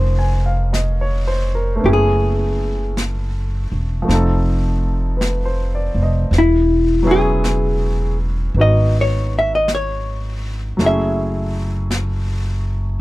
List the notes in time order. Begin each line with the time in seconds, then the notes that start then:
Already playing: F1 F3 A#3 C#4 D#4 F4 G#4 A#4 C5
0.19 G#5
0.46 F5
0.73 D#5, brush sweep, snare, hi-hat pedal
0.86 A#4
1.01 C#5
1.27 C5
1.55 A#4
1.76 A3 B3
1.80 F#1 C#4 E4
1.85 G4 G#4, brush sweep
1.93 G#4
2.97 brush sweep, snare, hi-hat pedal
3.72 E1
4.02 F3 A3
4.08 F1 C4 D#4, brush sweep, snare
4.14 A4
5.17 B4
5.21 brush sweep, snare, hi-hat pedal
5.45 C5
5.75 D5
5.94 F1
6.03 D#5
6.31 E1, brush sweep, snare
6.38 E4
7.03 F#3 B3 C#4 E4
7.07 G#4
7.44 brush sweep, snare, hi-hat pedal
8.54 G#1 B3 D#4, brush sweep
8.59 F#4 D#5
9.01 C#5
9.39 E5
9.55 D#5
9.68 brush sweep, snare, hi-hat pedal
9.75 C#5
10.77 F#1 F#3 A3 C#4, brush sweep, snare
10.82 E4 G#4
10.86 E5
11.91 brush sweep, snare, hi-hat pedal